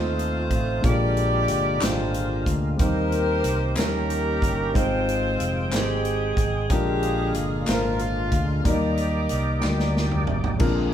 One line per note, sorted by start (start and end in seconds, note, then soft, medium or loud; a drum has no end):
0.00 0.48 D#2 medium
0.00 0.82 A3 medium
0.00 0.85 A3 medium
0.00 0.86 A3 medium
0.00 0.81 C4 medium
0.00 0.87 C4 medium
0.00 0.82 D#4 medium
0.00 0.86 D#4 medium
0.00 0.53 F4 medium
0.00 0.81 F4 medium
0.00 0.84 F4 medium
0.00 0.87 C5 medium
0.00 0.87 C5 loud
0.19 closed hi-hat soft
0.50 0.81 A1 medium
0.50 0.83 F4 medium
0.50 kick medium
0.50 closed hi-hat medium
0.81 1.45 A#1 medium
0.81 1.77 A#2 medium
0.81 2.76 D3 medium
0.81 1.49 G#3 medium
0.81 2.75 G#3 medium
0.81 1.49 A#3 medium
0.81 2.76 A#3 medium
0.81 1.50 D4 medium
0.81 1.50 F4 medium
0.81 2.75 F4 medium
0.81 1.51 A#4 medium
0.81 kick loud
0.81 closed hi-hat medium
0.86 1.79 D4 medium
0.86 1.84 G4 medium
0.86 1.84 D5 loud
1.17 closed hi-hat soft
1.48 1.79 G1 medium
1.48 closed hi-hat medium
1.79 2.43 G#1 medium
1.79 2.47 G#3 medium
1.79 2.47 A#3 soft
1.79 2.47 D4 medium
1.79 2.48 F4 soft
1.79 2.48 G4 medium
1.79 clap medium
1.79 closed hi-hat medium
1.83 2.63 G#3 medium
1.83 2.63 D4 medium
1.83 2.56 F4 medium
1.83 2.56 C5 medium
1.83 snare loud
2.14 closed hi-hat soft
2.46 2.77 D2 medium
2.46 kick medium
2.46 closed hi-hat medium
2.76 3.41 D#2 medium
2.76 3.72 D#3 medium
2.76 3.76 D#3 medium
2.76 3.44 G3 medium
2.76 3.45 A#3 medium
2.76 3.76 A#3 medium
2.76 3.45 C4 medium
2.76 3.46 D#4 medium
2.76 3.73 G4 medium
2.76 3.77 G4 medium
2.76 3.46 A#4 medium
2.76 kick loud
2.76 closed hi-hat medium
2.81 3.78 C4 soft
2.81 3.74 A#4 loud
2.81 3.74 C5 loud
3.12 closed hi-hat soft
3.44 3.74 C2 medium
3.44 closed hi-hat medium
3.75 4.39 D#2 medium
3.75 4.70 D#3 medium
3.75 4.74 D#3 medium
3.75 3.83 F3 soft
3.75 4.43 A#3 soft
3.75 4.74 A#3 medium
3.75 4.43 C#4 medium
3.75 4.75 C#4 medium
3.75 4.43 D#4 soft
3.75 3.84 F#4 soft
3.75 4.78 A#4 medium
3.75 4.44 A#4 medium
3.75 clap medium
3.75 closed hi-hat medium
3.79 4.45 G3 medium
3.79 4.72 A#3 medium
3.79 4.72 C#4 medium
3.79 4.76 G4 medium
3.79 snare loud
3.84 4.78 G4 medium
4.10 closed hi-hat medium
4.42 4.72 G1 medium
4.42 kick medium
4.42 closed hi-hat medium
4.72 5.36 G#1 medium
4.72 5.68 G#2 medium
4.72 6.66 D#3 medium
4.72 5.40 G#3 medium
4.72 6.66 G#3 medium
4.72 4.81 A#3 soft
4.72 5.40 C4 medium
4.72 5.69 C4 medium
4.72 5.41 D#4 medium
4.72 5.41 G4 medium
4.72 5.41 C5 medium
4.72 5.72 C5 loud
4.72 6.66 G5 medium
4.72 kick medium
4.72 closed hi-hat medium
4.77 5.69 F4 medium
4.81 6.69 C4 medium
5.09 closed hi-hat soft
5.40 5.72 F1 medium
5.40 closed hi-hat medium
5.69 6.33 G#1 medium
5.69 6.37 G#3 medium
5.69 6.38 C4 medium
5.69 6.66 C4 medium
5.69 6.38 D#4 soft
5.69 6.66 D#4 medium
5.69 6.46 G4 medium
5.69 6.73 G#4 medium
5.69 6.39 C5 medium
5.69 6.38 G5 soft
5.69 clap medium
5.69 closed hi-hat medium
5.75 snare loud
6.05 closed hi-hat soft
6.37 6.67 G#1 medium
6.37 kick medium
6.37 closed hi-hat medium
6.69 7.31 A#1 medium
6.69 7.64 A#2 medium
6.69 8.61 D3 medium
6.69 7.36 G#3 medium
6.69 8.61 G#3 soft
6.69 7.36 A#3 medium
6.69 8.62 A#3 medium
6.69 7.64 D4 medium
6.69 7.36 D4 medium
6.69 7.63 F4 medium
6.69 8.61 F4 medium
6.69 7.37 F4 medium
6.69 7.41 G4 medium
6.69 7.64 G#4 loud
6.69 7.37 A#4 medium
6.69 kick medium
6.69 closed hi-hat medium
7.03 closed hi-hat soft
7.34 7.65 G1 medium
7.34 closed hi-hat medium
7.66 8.29 G#1 medium
7.66 8.33 G#3 medium
7.66 8.33 A#3 soft
7.66 8.34 D4 soft
7.66 8.34 F4 soft
7.66 8.62 F4 medium
7.66 7.98 A#4 medium
7.66 8.35 C5 medium
7.66 snare medium
7.66 clap medium
7.66 closed hi-hat medium
7.99 8.33 F4 medium
7.99 closed hi-hat soft
8.31 8.62 D2 medium
8.31 8.64 F4 medium
8.31 kick medium
8.31 closed hi-hat medium
8.63 9.26 D#2 medium
8.63 9.59 D#3 medium
8.63 8.70 F#3 medium
8.63 9.31 A#3 medium
8.63 10.56 A#3 soft
8.63 9.59 A#3 medium
8.63 10.56 D#4 medium
8.63 9.32 D#4 medium
8.63 9.92 D#4 medium
8.63 10.56 G4 medium
8.63 8.95 G4 medium
8.63 9.32 A#4 medium
8.63 9.31 D5 medium
8.63 9.59 D5 medium
8.63 10.56 D5 medium
8.63 kick medium
8.63 closed hi-hat medium
8.69 9.33 G3 medium
8.97 9.27 G4 medium
8.97 closed hi-hat soft
9.29 9.61 C2 medium
9.29 9.60 G4 medium
9.29 closed hi-hat medium
9.60 10.27 G3 medium
9.60 10.28 A#3 soft
9.60 10.56 A#3 medium
9.60 10.29 D#4 medium
9.60 9.70 F#4 soft
9.60 10.32 G4 medium
9.60 10.28 D5 soft
9.60 10.56 D5 medium
9.60 clap medium
9.64 10.24 D2 medium
9.64 snare soft
9.70 10.32 G4 medium
9.80 snare soft
9.97 snare medium
10.11 mid tom medium
10.27 10.58 G#1 medium
10.27 floor tom medium
10.44 floor tom medium
10.57 10.94 A#1 loud
10.57 10.94 A#2 medium
10.57 10.94 G#3 medium
10.57 10.94 C4 medium
10.57 10.94 D4 medium
10.57 10.94 F4 medium
10.57 10.94 A#4 medium
10.57 kick loud
10.57 crash medium
10.61 10.67 C#3 medium
10.61 10.94 A#3 medium
10.61 10.94 C4 medium
10.61 10.94 G#4 medium
10.68 10.94 D3 medium